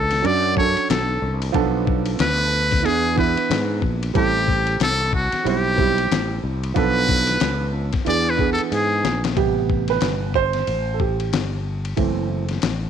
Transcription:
Already playing: fretless electric bass C#2, muted trumpet A4
0.11 snare, ride
0.22 fretless electric bass F#2, grand piano F#3 C#4 D4 F#4, muted trumpet D5, ride
0.55 grand piano F#3 C#4 D4 A4, muted trumpet C#5, kick
0.77 muted fretless electric bass stroke, ride
0.90 fretless electric bass B1, muted trumpet A4, snare, hi-hat pedal, ride
1.22 fretless electric bass C2
1.42 ride
1.52 fretless electric bass B1, grand piano F3 B3 D4 A4, kick, ride
1.87 kick
2.06 ride
2.19 fretless electric bass D2, muted trumpet B4, snare, hi-hat pedal, ride
2.71 kick, snare, ride
2.83 fretless electric bass E2, grand piano E3 B3 D4 G#4, muted trumpet G#4, ride
3.15 grand piano E3 B3 D4 E4, muted trumpet B4, kick
3.37 muted fretless electric bass stroke, ride
3.50 fretless electric bass G#2, snare, hi-hat pedal, ride
3.82 fretless electric bass A#1, kick
4.03 ride
4.14 fretless electric bass A1, grand piano G3 C4 E4 A4, muted trumpet G4, kick, ride
4.48 kick
4.67 ride
4.80 fretless electric bass C2, muted trumpet A4, snare, hi-hat pedal, ride
5.13 muted trumpet F#4, kick
5.32 muted fretless electric bass stroke, snare, ride
5.44 fretless electric bass B1, grand piano G3 C4 E4 C5, muted trumpet G4, ride
5.76 grand piano G3 C4 E4 G4, kick
5.98 ride
6.11 fretless electric bass A1, snare, hi-hat pedal, ride
6.44 fretless electric bass C2
6.63 ride
6.74 fretless electric bass B1, grand piano F3 B3 D4 A4, muted trumpet B4, kick, ride
7.09 kick
7.27 snare, ride
7.40 fretless electric bass C#2, snare, hi-hat pedal, ride
7.93 muted fretless electric bass stroke, kick, snare, ride
8.05 fretless electric bass E2, grand piano E3 B3 D4 G#4, muted trumpet D5, ride
8.30 muted trumpet B4
8.37 grand piano E3 B3 D4 G#4, kick
8.53 muted trumpet A4
8.59 muted fretless electric bass stroke, ride
8.72 fretless electric bass G#2, muted trumpet G#4, hi-hat pedal, ride
9.04 fretless electric bass A#1, snare
9.24 snare, ride
9.36 fretless electric bass A1, grand piano C3 G3 B3 G4, kick, ride
9.70 kick
9.88 grand piano B4, snare, ride
10.01 fretless electric bass G1, snare, hi-hat pedal, ride
10.34 grand piano C5, kick
10.53 snare, ride
10.67 fretless electric bass A1, ride
10.94 grand piano A4
11.00 grand piano G4, kick
11.20 ride
11.32 fretless electric bass G1, snare, hi-hat pedal, ride
11.85 ride
11.97 fretless electric bass F#1, grand piano E3 A3 C4, kick, ride
12.49 snare, ride
12.62 fretless electric bass A1, snare, hi-hat pedal, ride

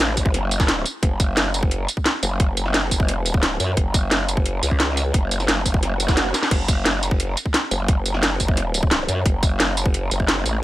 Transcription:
Already playing: wobble bass A1
0.17 kick, open hi-hat, tambourine
0.26 kick
0.34 wobble bass F#1, snare, closed hi-hat
0.51 closed hi-hat, tambourine
0.60 kick, snare, tambourine
0.68 snare, closed hi-hat
0.86 closed hi-hat, tambourine
1.03 wobble bass F#1, kick, closed hi-hat
1.20 kick, closed hi-hat, tambourine
1.37 snare, closed hi-hat
1.54 closed hi-hat, tambourine
1.63 kick
1.71 closed hi-hat
1.88 closed hi-hat, tambourine
1.97 kick
2.06 snare, closed hi-hat
2.23 wobble bass F#1, closed hi-hat, tambourine
2.40 kick, closed hi-hat
2.57 closed hi-hat, tambourine
2.66 snare
2.74 snare, closed hi-hat
2.91 kick, open hi-hat, tambourine
3.00 kick
3.08 snare, closed hi-hat
3.21 wobble bass E1
3.26 closed hi-hat, tambourine
3.34 kick
3.43 wobble bass D1, snare, closed hi-hat
3.60 wobble bass F#2, closed hi-hat, tambourine
3.77 wobble bass F#1, kick, closed hi-hat
3.94 kick, closed hi-hat, tambourine
4.11 snare, closed hi-hat
4.29 closed hi-hat, tambourine
4.37 kick
4.46 closed hi-hat
4.63 wobble bass C#2, closed hi-hat, tambourine
4.71 kick
4.80 snare, closed hi-hat
4.97 closed hi-hat, tambourine
5.14 wobble bass F#1, kick, closed hi-hat
5.31 closed hi-hat, tambourine
5.40 snare, tambourine
5.48 wobble bass F#1, snare, closed hi-hat
5.66 kick, open hi-hat, tambourine
5.74 kick
5.83 snare, closed hi-hat, swell
6.00 closed hi-hat, tambourine
6.08 kick, snare, tambourine
6.17 snare, closed hi-hat
6.34 snare, closed hi-hat, tambourine
6.43 snare
6.51 wobble bass F#1, kick, closed hi-hat, crash
6.68 kick, closed hi-hat, tambourine
6.86 snare, closed hi-hat
7.03 closed hi-hat, tambourine
7.11 kick
7.20 closed hi-hat
7.37 closed hi-hat, tambourine
7.46 kick
7.54 snare, closed hi-hat
7.71 wobble bass F#1, closed hi-hat, tambourine
7.88 kick, closed hi-hat
8.06 closed hi-hat, tambourine
8.14 snare
8.23 snare, closed hi-hat
8.40 kick, open hi-hat, tambourine
8.48 kick
8.57 snare, closed hi-hat
8.74 closed hi-hat, tambourine
8.83 kick
8.91 snare, closed hi-hat
9.08 wobble bass F#2, closed hi-hat, tambourine
9.26 wobble bass F#1, kick, closed hi-hat
9.43 kick, closed hi-hat, tambourine
9.60 snare, closed hi-hat
9.77 closed hi-hat, tambourine
9.86 kick
9.94 closed hi-hat
10.11 wobble bass F#1, closed hi-hat, tambourine
10.20 kick
10.28 snare, closed hi-hat
10.46 wobble bass A1, closed hi-hat, tambourine

